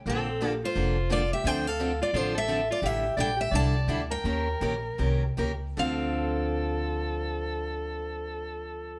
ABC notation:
X:1
M:4/4
L:1/16
Q:"Swing" 1/4=165
K:Dm
V:1 name="Steel-string acoustic guitar"
A6 c6 d2 e2 | g2 f4 d2 c2 e4 d2 | e4 g2 e2 a6 g2- | g12 z4 |
f16- | f16 |]
V:2 name="Soprano saxophone"
C6 F6 F2 G2 | c2 A4 F2 F2 A4 F2 | G4 d2 G2 d6 B2- | B12 z4 |
A16- | A16 |]
V:3 name="Steel-string acoustic guitar"
[D,F,B,DA]2 z2 [D,F,B,DA] z3 [D,F,B,DA]2 z2 [D,F,B,DA] z3 | [D,F,CDA]2 z2 [D,F,CDA] z3 [D,F,CDA]2 z2 [D,F,CDA] z3 | [D,G,DEA]2 z2 [D,G,DEA] z3 [D,G,DEA]2 z2 [D,G,DEA] z3 | [_E,B,_DGB]2 z2 [E,B,DGB] z3 [E,B,DGB]2 z2 [E,B,DGB] z3 |
[D,F,CDA]16- | [D,F,CDA]16 |]
V:4 name="Upright bass" clef=bass
B,,,8 F,,,8 | D,,8 A,,,8 | A,,,4 B,,,4 C,,4 D,,4 | _E,,4 B,,,4 C,,4 _D,,4 |
D,,16- | D,,16 |]